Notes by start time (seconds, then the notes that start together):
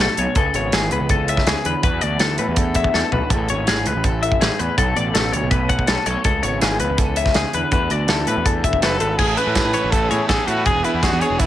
Already playing: F#3 A3 C#4 F#4
0.00 A2 A4
0.17 B1 B2 C#5, closed hi-hat
0.35 C#2 C#3 G#4 A4, kick, closed hi-hat
0.54 G#1 B3 C#5, closed hi-hat
0.72 G#1 E3 G#4, snare, closed hi-hat
0.91 C#2 B3 B4, closed hi-hat
1.01 C#2
1.09 C#4 A4, kick, closed hi-hat
1.28 E3 E5, closed hi-hat
1.37 kick, snare
1.47 C#2 C#3 G#4, snare, closed hi-hat
1.65 E2 D3 B4, closed hi-hat
1.83 E2 F#4 B4, kick, closed hi-hat
2.01 D2 A3 D5, closed hi-hat
2.19 D2 E3 A4, snare, closed hi-hat
2.38 A2 A3 B4, closed hi-hat
2.48 E2
2.56 D4 A4, kick, closed hi-hat
2.74 E3 E5, kick, closed hi-hat
2.84 kick
2.94 E2 D4 A4, snare
3.12 B1 F#4 B4, floor tom
3.30 A1 A2 G#4 A4, kick, closed hi-hat
3.48 G#1 C#4 C#5, closed hi-hat
3.67 G#1 E3 G#4, snare, closed hi-hat
3.86 C#2 C#4 B4, closed hi-hat
3.95 A1
4.04 E4 A4, kick, closed hi-hat
4.23 E3 E5, closed hi-hat
4.32 kick
4.41 A1 G#2 G#4, snare, closed hi-hat
4.59 E2 A2 B4, closed hi-hat
4.77 B1 B2 F#4 A4, kick, closed hi-hat
4.96 A1 A3 D5, closed hi-hat
5.14 A1 F#3 A4, snare, closed hi-hat
5.33 D2 A3 C#5, closed hi-hat
5.43 B1
5.51 C#4 B4, kick, closed hi-hat
5.69 F#3 F#5, kick, closed hi-hat
5.79 kick
5.87 B1 C#4 A4, snare, closed hi-hat
6.06 B1 A4 C#5, closed hi-hat
6.24 C#2 C#3 G#4 A4, kick, closed hi-hat
6.43 G#1 B3 C#5, closed hi-hat
6.61 G#1 E3 G#4, snare, closed hi-hat
6.80 C#2 B3 B4, closed hi-hat
6.90 C#2
6.98 C#4 A4, kick, closed hi-hat
7.16 E3 E5, closed hi-hat
7.26 kick, snare
7.34 C#2 C#3 G#4, snare, closed hi-hat
7.53 E2 D3 B4, closed hi-hat
7.71 E2 E3 A3 D4 F#4 B4, kick, closed hi-hat
7.90 D2 A3 D5, closed hi-hat
8.08 D2 E3 A4, snare, closed hi-hat
8.27 A2 A3 B4, closed hi-hat
8.37 E2
8.46 D4 A4, kick, closed hi-hat
8.64 E1 E3 E5, kick, closed hi-hat
8.73 kick
8.82 F#1 F#2 A4 B4, snare, closed hi-hat
9.00 G#1 G#2 A4 B4, closed hi-hat
9.18 A1 A2 E3 A3 C#4 E4 G#4 A4, kick, crash
9.36 A3 C#4 E4 A4 B4, closed hi-hat
9.47 A2
9.55 A3 C#4 E4 G#4 A4, kick, snare, closed hi-hat
9.65 A2
9.73 E3 A3 C#4 E4 A4 C#5, closed hi-hat
9.84 A1
9.91 A2 E3 A3 C#4 E4 A4 B4, kick, closed hi-hat
10.10 E2 A2 E4 G#4 C#5, closed hi-hat
10.28 A1 A3 C#4 E4 G#4 A4, kick, snare, closed hi-hat
10.47 A2 A3 C#4 E4 F#4 A4 B4, closed hi-hat
10.57 E4
10.65 E1 E2 E3 B3 D4 G#4, kick, closed hi-hat
10.84 B3 D4 E4 G#4 B4, closed hi-hat
10.94 E2
11.02 E3 B3 D4 F#4 G#4, kick, snare, closed hi-hat
11.12 E2
11.20 E3 B3 D4 G#4 C#5, closed hi-hat
11.30 E1
11.39 E3 B3 D4 E4 G#4 B4, kick, closed hi-hat